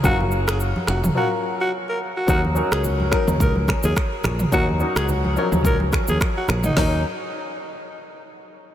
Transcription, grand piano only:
0.03 F#3 C#4 F4 A#4
1.15 F#3 C#4 F4 A#4
2.27 F#3 C#4 D#4 A#4
2.55 F#3 C#4 D#4 A#4
3.11 F#3 C#4 D#4 A#4
4.52 F#3 C#4 D#4 A#4
4.79 F#3 C#4 D#4 F#4
5.36 F3 C#4 D#4 C#5
5.42 F#3
6.77 F#3 C#4 D#4 A#4

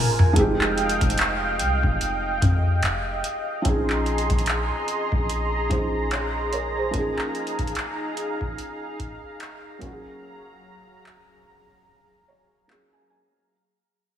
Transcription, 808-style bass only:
Already playing: F#1
0.36 F1
1.01 F1
1.60 C2
1.83 F1
2.42 F2
2.83 F1
3.65 A#1
4.30 A#1
5.12 A#1
5.70 A#1

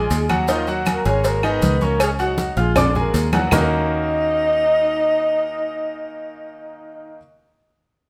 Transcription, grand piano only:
Already playing: G#3 G#4 G#5
0.29 F#3 F#4 F#5
0.48 D#3 D#4 D#5
0.67 F#3 F#4 F#5
1.05 G#3 G#4 G#5
1.44 D#3 D#4 D#5
1.82 C#4 C#5 C#6
2.20 F#4 F#5 F#6
2.57 F4 F5 F6
2.77 D4 D5 D6
2.96 G#3 G#4 G#5
3.34 F#3 F#4 F#5
3.52 D#3 A#3 C#4 D#4 F#4 A#4

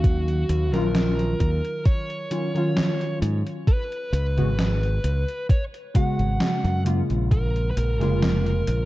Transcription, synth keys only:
Already playing: D#3 F#3 C#4 F5
0.72 D#3 F#3 C#4 F4
2.30 D#3 F#3 C#4 F4
2.54 D#3 F#3 C#4 F4
4.37 C#3 G#3 B3 F#4
5.94 C#3 G#3 B3 F#4
6.84 C#3 G#3 A#3 F4
7.99 C#3 G#3 A#3 F4

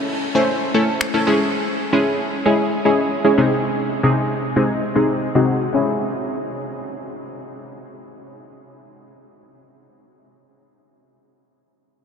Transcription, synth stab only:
Already playing: A3 C#4 E4 A4
0.35 A3 C#4 E4 C5
0.74 A3 C#4 E4 A4
1.14 A3 C#4 E4 A4
1.27 G#3 C#4 E4 G#4
1.93 G#3 C#4 E4 G#4
2.45 G#3 C#4 E4 G#4
2.85 G#3 C#4 E4 G#4
3.24 G#3 C#4 E4 G#4
3.38 C3 G#3 C4 D#4 G#4
4.03 C3 G#3 C4 D#4 G#4
4.56 C3 G#3 C4 D#4 G#4
4.95 C3 G#3 C4 D#4 G#4
5.35 C3 G#3 C4 D#4 F#4
5.73 G#3 C#4 E4
5.77 G#4

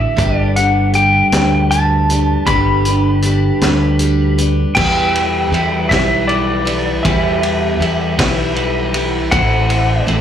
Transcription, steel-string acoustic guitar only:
Already playing: E4 F#4 A4
0.17 G3 D4 G4 B4
0.56 D4 G4 B4
0.94 G3 D4 G4 B4
1.32 G3 D4 G4 B4
1.71 G3 D4 G4 B4
2.09 D4 G4 B4
2.48 G3 D4 G4 B4
2.85 D4 G4 B4
3.24 G3 D4 G4 B4
3.63 G3 D4 G4 B4
4.00 G3 D4 G4 B4
4.38 D4 G4 B4
4.76 E3 G3 E4 G4 B4
5.52 G3 E4 G4 B4
5.92 E3 G3 E4 G4 B4
6.65 E4 G4 B4
7.05 E3 G3 E4 G4 B4
7.81 G3 E4 G4 B4
8.19 E3 G3 E4 G4 B4
8.94 E4 G4 B4
9.31 A2 E3 A3 C4 E4 C5
10.07 A3 C4 E4 C5

